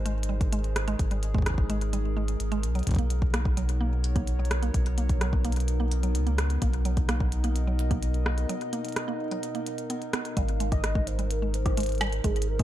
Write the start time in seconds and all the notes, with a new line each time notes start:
Already playing: G#1 G#3 D#4 G#4 A#4 C5
0.06 G#3, closed hi-hat
0.23 closed hi-hat
0.29 G3
0.41 kick, closed hi-hat
0.52 G#3, closed hi-hat
0.64 closed hi-hat
0.76 cross-stick, closed hi-hat
0.88 G#3, closed hi-hat
0.99 G#1, kick, closed hi-hat
1.11 G3, closed hi-hat
1.23 closed hi-hat
1.35 G#3, kick
1.38 kick
1.42 kick
1.46 kick, cross-stick, closed hi-hat
1.50 kick
1.54 kick
1.58 kick
1.70 G#3, closed hi-hat
1.81 closed hi-hat
1.93 G3, closed hi-hat
2.17 G#3
2.28 closed hi-hat
2.40 G#1, closed hi-hat
2.52 G#3, closed hi-hat
2.63 B1 B2, closed hi-hat
2.75 F#3 B3, closed hi-hat
2.79 closed hi-hat
2.83 B1, kick, closed hi-hat
2.87 kick, closed hi-hat
2.91 kick, closed hi-hat
2.94 kick, closed hi-hat
2.96 A#3, kick, closed hi-hat
3.07 C#5, closed hi-hat
3.22 kick
3.34 A#3, cross-stick, closed hi-hat
3.45 kick
3.57 F#3, closed hi-hat
3.69 closed hi-hat
3.81 A#3
4.04 closed hi-hat
4.16 A#3, kick, closed hi-hat
4.27 closed hi-hat
4.39 F#3
4.45 closed hi-hat
4.51 cross-stick, closed hi-hat
4.63 A#3, closed hi-hat
4.74 B1, kick, closed hi-hat
4.86 closed hi-hat
4.98 A#3, closed hi-hat
5.09 kick, closed hi-hat
5.21 F#3, cross-stick, closed hi-hat
5.33 kick
5.45 A#3, closed hi-hat
5.52 closed hi-hat
5.56 closed hi-hat
5.60 closed hi-hat
5.68 closed hi-hat
5.80 A#3
5.92 closed hi-hat
6.03 F#3, closed hi-hat
6.15 C#2, closed hi-hat
6.27 A#3, closed hi-hat
6.38 cross-stick, closed hi-hat
6.50 closed hi-hat
6.62 B1 A#3, kick, closed hi-hat
6.74 closed hi-hat
6.85 F#3 D#5, closed hi-hat
6.97 kick, closed hi-hat
7.09 A#3, cross-stick, closed hi-hat
7.20 kick
7.32 closed hi-hat
7.44 A#3, closed hi-hat
7.56 closed hi-hat
7.67 F#3
7.79 closed hi-hat
7.91 A#3, kick, closed hi-hat
8.03 closed hi-hat
8.14 closed hi-hat
8.26 A#3, cross-stick
8.38 closed hi-hat
8.49 F#3, closed hi-hat
8.61 closed hi-hat
8.73 A#3, closed hi-hat
8.85 closed hi-hat
8.89 closed hi-hat
8.92 cross-stick, closed hi-hat
8.96 closed hi-hat
9.08 A#3
9.31 F#3, closed hi-hat
9.43 closed hi-hat
9.55 A#3, closed hi-hat
9.67 closed hi-hat
9.78 closed hi-hat
9.90 B3, closed hi-hat
10.02 closed hi-hat
10.13 B3, cross-stick, closed hi-hat
10.25 closed hi-hat
10.37 G#1 G3 G#3 F5, kick, closed hi-hat
10.49 closed hi-hat
10.60 G#3, closed hi-hat
10.66 G3
10.72 D#5, kick, cross-stick, closed hi-hat
10.84 cross-stick, closed hi-hat
10.95 G#3, kick
11.07 C5, closed hi-hat
11.15 G3 C5, closed hi-hat
11.31 A#4, closed hi-hat
11.42 G#3
11.54 C5, closed hi-hat
11.66 kick, cross-stick, closed hi-hat
11.77 G#3, closed hi-hat
11.80 closed hi-hat
11.83 closed hi-hat
11.86 closed hi-hat
11.89 closed hi-hat
11.92 closed hi-hat
11.95 closed hi-hat
11.98 cross-stick, closed hi-hat
12.01 G3, closed hi-hat
12.04 closed hi-hat
12.07 closed hi-hat
12.10 closed hi-hat
12.12 closed hi-hat
12.24 G#1 G#3 G#4, kick, closed hi-hat
12.36 closed hi-hat
12.42 closed hi-hat
12.48 A#4
12.59 G#3, kick, cross-stick, closed hi-hat